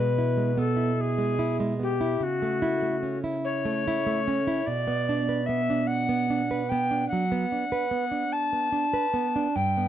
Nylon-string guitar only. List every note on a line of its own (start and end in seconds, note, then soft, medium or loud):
0.00 2.18 B2 soft
0.00 0.30 G#3 soft
0.18 0.51 E4 soft
0.37 0.70 G#3 soft
0.57 0.91 B3 soft
0.77 1.38 E4 soft
1.18 1.52 G#3 soft
1.39 1.73 E4 soft
1.60 1.94 G#3 soft
1.79 2.13 B3 soft
2.01 2.22 E4 soft
2.20 4.62 C#3 soft
2.42 2.75 A3 soft
2.62 2.96 E4 soft
2.82 3.16 A3 soft
3.03 3.37 C#4 soft
3.24 3.86 E4 soft
3.65 3.98 A3 soft
3.88 4.19 E4 soft
4.06 4.39 A3 soft
4.28 4.60 C#4 soft
4.47 4.67 E4 soft
4.67 7.07 B2 soft
4.87 5.20 B3 soft
5.09 5.40 D4 soft
5.29 5.60 B4 soft
5.49 5.81 B3 soft
5.70 6.29 D4 soft
6.09 6.41 B3 soft
6.30 6.62 D4 soft
6.51 6.83 B4 soft
6.72 7.04 B3 soft
6.91 7.23 D4 soft
7.12 7.44 F#3 soft
7.32 7.64 B3 soft
7.52 7.84 D4 soft
7.72 8.04 B4 soft
7.91 8.24 B3 soft
8.11 8.71 D4 soft
8.53 8.85 B3 soft
8.72 9.06 D4 soft
8.93 9.27 B4 soft
9.14 9.47 B3 soft
9.36 9.56 D4 soft
9.56 9.88 G2 soft
9.77 9.88 B3 soft